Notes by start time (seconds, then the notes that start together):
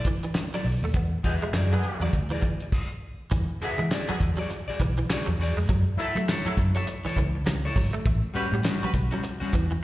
0.05 E3, muted clean electric guitar stroke, kick, closed hi-hat
0.23 E3, muted clean electric guitar stroke, closed hi-hat
0.35 muted clean electric guitar stroke, snare, clap, closed hi-hat
0.54 F#3 E4 A4 D5
0.65 B1, muted clean electric guitar stroke, open hi-hat
0.82 D#2 A3, muted clean electric guitar stroke
0.94 E2 B3, kick, closed hi-hat
1.24 E2 D3 B3 F#4 G#4 E5, muted clean electric guitar stroke, kick, closed hi-hat
1.42 G#3
1.53 F#2 F#4 G#4 D5, snare, clap, closed hi-hat
1.72 D3 F#3 B3 G#4
1.83 muted clean electric guitar stroke, closed hi-hat
2.00 E2 F#3 G#4 D5
2.04 F#4
2.13 D2, muted clean electric guitar stroke, kick, closed hi-hat
2.30 E3 F#4 G#4 D5
2.42 E3, muted clean electric guitar stroke, kick, closed hi-hat
2.60 muted clean electric guitar stroke, closed hi-hat
2.72 kick, crash
3.31 E2 E3, kick, closed hi-hat
3.61 D3 B3 F#4 G#4 E5, muted fingered electric bass stroke, muted clean electric guitar stroke, closed hi-hat
3.78 E3 G#3, closed hi-hat
3.91 F#4 G#4 D5, snare, clap, closed hi-hat, tambourine
4.08 D3 F#3 B3 G#4, muted fingered electric bass stroke
4.20 E2, muted clean electric guitar stroke, kick, closed hi-hat
4.37 F#3 F#4 G#4 D5
4.51 muted clean electric guitar stroke, closed hi-hat
4.68 F#4 G#4 D5, muted fingered electric bass stroke
4.80 B1 E3, muted clean electric guitar stroke, kick, closed hi-hat
4.98 E3, muted clean electric guitar stroke
5.10 F#4 G#4 D5, snare, clap, closed hi-hat, tambourine
5.26 E2 F#3, muted clean electric guitar stroke
5.38 E2 F#4 G#4 D5, muted clean electric guitar stroke, open hi-hat
5.56 F2 G#3, muted clean electric guitar stroke
5.69 F#2 F#3, kick, closed hi-hat
5.97 F#3 E4 A4, muted fingered electric bass stroke, muted clean electric guitar stroke, closed hi-hat
6.02 E5
6.15 F#3 A3, closed hi-hat
6.28 E4 A4 C#5, snare, clap, closed hi-hat, tambourine
6.45 F#3 E4 A4, muted fingered electric bass stroke
6.57 F#2, muted clean electric guitar stroke, kick, closed hi-hat
6.75 F#3 E4 A4 C#5
6.87 muted clean electric guitar stroke, closed hi-hat
7.05 E3 E4 A4 C#5, muted fingered electric bass stroke
7.16 C#2 E3, muted clean electric guitar stroke, kick, closed hi-hat
7.35 muted clean electric guitar stroke
7.46 C#2, muted clean electric guitar stroke, snare, clap, closed hi-hat, tambourine
7.65 E4 A4 C#5
7.76 G#1 F#3, muted clean electric guitar stroke, kick, open hi-hat
7.93 A3, muted clean electric guitar stroke, closed hi-hat
8.06 A1 A3, kick, closed hi-hat
8.34 G3 C#4 F#4 G4 B4, muted fingered electric bass stroke, muted clean electric guitar stroke, closed hi-hat
8.52 A2 G3
8.63 G3 C#4 F#4, snare, clap, closed hi-hat, tambourine
8.83 F#3 G3 F#4 B4, muted fingered electric bass stroke
8.93 B1, muted clean electric guitar stroke, kick, closed hi-hat
9.11 F#3 G3 C#4 F#4
9.23 muted clean electric guitar stroke, closed hi-hat
9.40 G3 C#4 F#4, muted fingered electric bass stroke
9.53 E2 E3, muted clean electric guitar stroke, kick, closed hi-hat
9.71 E3, muted clean electric guitar stroke